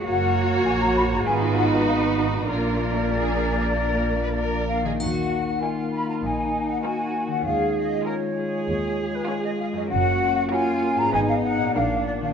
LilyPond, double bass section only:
\new Staff \with { instrumentName = "Double bass section" } { \clef bass \time 4/4 \key ees \minor \tempo 4 = 98 ges,,4 bes,,4 aes,,2 | bes,,2.~ bes,,8 r8 | ees,4 r4 bes,,4 r4 | ees,4 r4 ees,4 r4 |
ges,,4 r4 aes,,4 bes,,4 | }